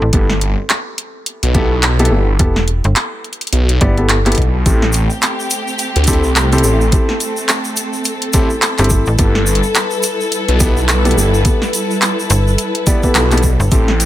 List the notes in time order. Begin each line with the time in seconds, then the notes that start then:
0.02 A1
0.13 G1 B3 E4 G4 A4, kick, closed hi-hat
0.30 snare
0.41 closed hi-hat
0.70 clap, closed hi-hat
0.98 closed hi-hat
1.26 closed hi-hat
1.43 B1, closed hi-hat
1.55 B3 E4 G4 A4, kick, closed hi-hat
1.71 B1
1.83 clap, closed hi-hat
1.99 B3 E4 G4 A4, closed hi-hat
2.05 closed hi-hat
2.11 G1 B3 E4 G4 A4
2.39 E1 B3 E4 G4 A4, kick, closed hi-hat
2.56 snare
2.68 closed hi-hat
2.84 G1, closed hi-hat
2.96 clap, closed hi-hat
3.24 closed hi-hat
3.33 closed hi-hat
3.41 closed hi-hat
3.47 closed hi-hat
3.53 B1, closed hi-hat
3.69 closed hi-hat
3.81 G1 B3 E4 G4 D5, kick, closed hi-hat
3.98 B3 E4 G4 A4, closed hi-hat
4.09 clap, closed hi-hat
4.26 B3 E4 G4 A4, clap, closed hi-hat
4.32 closed hi-hat
4.35 closed hi-hat
4.38 B1, kick, closed hi-hat
4.42 closed hi-hat
4.66 A1 A3 C4 E4 G4 A4, kick, closed hi-hat, shaker
4.82 snare
4.92 closed hi-hat, shaker
5.10 shaker
5.22 clap, closed hi-hat, shaker
5.40 shaker
5.50 closed hi-hat, shaker
5.67 shaker
5.78 closed hi-hat, shaker
5.96 D2, closed hi-hat
6.04 kick, closed hi-hat, shaker
6.08 C4 E4 G4 A4, closed hi-hat
6.13 closed hi-hat
6.23 C2, shaker
6.36 clap, closed hi-hat, shaker
6.52 C4 E4 G4 A4, closed hi-hat, shaker
6.58 closed hi-hat
6.64 A1 C4 E4 G4 A4, shaker
6.81 shaker
6.92 C4 E4 G4 A4, kick, closed hi-hat, shaker
7.09 snare
7.20 closed hi-hat, shaker
7.37 shaker
7.49 clap, closed hi-hat, shaker
7.65 shaker
7.76 closed hi-hat, shaker
7.93 shaker
8.04 closed hi-hat, shaker
8.22 closed hi-hat
8.33 A1 C4 E4 G4 A4, kick, closed hi-hat, shaker
8.50 shaker
8.62 clap, closed hi-hat, shaker
8.78 G1 C4 E4 G4 A4, clap, closed hi-hat, shaker
8.84 closed hi-hat
8.90 C4 E4 G4 A4, kick, shaker
9.06 A1, shaker
9.18 G1 G3 B3 E4 G4 A4 B4, kick, closed hi-hat, shaker
9.35 snare
9.46 shaker
9.55 closed hi-hat
9.63 shaker
9.75 clap, closed hi-hat, shaker
9.91 shaker
10.03 closed hi-hat, shaker
10.20 shaker
10.32 closed hi-hat, shaker
10.48 B1, closed hi-hat
10.60 B3 E4 G4 A4, kick, closed hi-hat, shaker
10.77 B1, shaker
10.89 clap, closed hi-hat, shaker
11.05 B3 E4 G4 A4, closed hi-hat, shaker
11.11 closed hi-hat
11.17 G1 B3 E4 G4 A4, shaker
11.34 shaker
11.45 B3 E4 G4 A4, kick, closed hi-hat, shaker
11.62 snare, shaker
11.73 closed hi-hat, shaker
11.91 shaker
12.02 clap, closed hi-hat, shaker
12.19 shaker
12.30 G1, closed hi-hat, shaker
12.47 shaker
12.58 closed hi-hat, shaker
12.75 closed hi-hat
12.87 B3 E4 G4 D5, kick, closed hi-hat, shaker
13.03 B3 E4 G4 A4, kick, shaker
13.15 B1, clap, closed hi-hat, shaker
13.31 B3 E4 G4 A4, clap, closed hi-hat, shaker
13.38 closed hi-hat
13.43 kick, shaker
13.60 G1, shaker
13.71 A1 A3 C4 E4 G4 A4, kick, closed hi-hat, shaker
13.88 snare
14.00 closed hi-hat, shaker